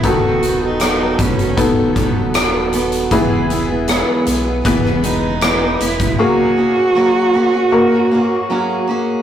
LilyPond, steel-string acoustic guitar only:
\new Staff \with { instrumentName = "Steel-string acoustic guitar" } { \time 4/4 \key e \lydian \tempo 4 = 78 <dis fis b fis' a'>8 <fis b fis' a'>16 <b fis' a'>16 <dis fis b fis' a'>8 <fis b fis' a'>16 <b fis' a'>8 <b fis' a'>16 <fis b fis' a'>8 <dis fis b fis' a'>8 <fis b fis' a'>8 | <e gis b e' gis'>8 <gis b e' gis'>16 <b e' gis'>16 <e gis b e' gis'>8 <gis b e' gis'>16 <b e' gis'>8 <b e' gis'>16 <gis b gis'>8 <e gis b e' gis'>16 <b e' gis'>16 <gis b e' gis'>8 | <fis ais cis' fis' gis'>8 <ais cis' fis' gis'>16 <cis' fis' gis'>16 <fis ais cis' fis' gis'>8 <ais cis' fis' gis'>16 <cis' fis' gis'>8 <cis' fis' gis'>16 <ais cis' fis' gis'>8 <fis ais cis' fis' gis'>8 <ais cis' fis' gis'>8 | }